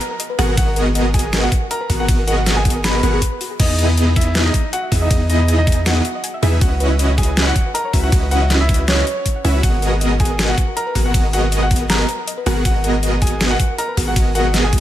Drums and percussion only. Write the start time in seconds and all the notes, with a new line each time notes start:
0.01 closed hi-hat
0.20 closed hi-hat
0.39 open hi-hat
0.57 kick, closed hi-hat, ride
0.76 closed hi-hat
0.95 closed hi-hat
1.14 kick, closed hi-hat
1.19 closed hi-hat
1.33 snare, closed hi-hat
1.52 kick, closed hi-hat
1.71 closed hi-hat
1.90 kick, open hi-hat
2.09 kick, closed hi-hat, ride
2.28 closed hi-hat
2.46 snare, closed hi-hat
2.65 kick, closed hi-hat
2.70 closed hi-hat
2.84 snare, closed hi-hat
3.03 closed hi-hat
3.22 kick, closed hi-hat
3.41 open hi-hat
3.60 kick, closed hi-hat, crash, ride
3.79 closed hi-hat
3.98 closed hi-hat
4.16 kick, closed hi-hat
4.21 closed hi-hat
4.35 snare, closed hi-hat
4.54 kick, closed hi-hat
4.73 closed hi-hat
4.92 kick, open hi-hat
5.11 kick, closed hi-hat, ride
5.30 closed hi-hat
5.48 closed hi-hat
5.67 kick, closed hi-hat
5.72 closed hi-hat
5.86 snare, closed hi-hat
6.05 closed hi-hat
6.24 closed hi-hat
6.43 open hi-hat
6.61 kick, closed hi-hat, ride
6.80 closed hi-hat
6.99 closed hi-hat
7.18 kick, closed hi-hat
7.23 closed hi-hat
7.37 snare, closed hi-hat
7.56 kick, closed hi-hat
7.75 closed hi-hat
7.93 kick, open hi-hat
8.12 kick, closed hi-hat, ride
8.31 closed hi-hat
8.50 snare, closed hi-hat
8.69 kick, closed hi-hat
8.74 closed hi-hat
8.88 snare, closed hi-hat
9.07 closed hi-hat
9.26 kick, closed hi-hat
9.45 open hi-hat
9.63 kick, closed hi-hat, ride
9.82 closed hi-hat
10.01 closed hi-hat
10.20 kick, closed hi-hat
10.25 closed hi-hat
10.39 snare, closed hi-hat
10.58 kick, closed hi-hat
10.77 closed hi-hat
10.95 kick, open hi-hat
11.14 kick, closed hi-hat, ride
11.33 closed hi-hat
11.52 closed hi-hat
11.71 kick, closed hi-hat
11.76 closed hi-hat
11.90 snare, closed hi-hat
12.09 closed hi-hat
12.28 closed hi-hat
12.46 open hi-hat
12.65 kick, closed hi-hat, ride
12.84 closed hi-hat
13.03 closed hi-hat
13.22 kick, closed hi-hat
13.27 closed hi-hat
13.41 snare, closed hi-hat
13.60 kick, closed hi-hat
13.78 closed hi-hat
13.97 kick, open hi-hat
14.16 kick, closed hi-hat, ride
14.35 closed hi-hat
14.54 snare, closed hi-hat
14.73 kick, closed hi-hat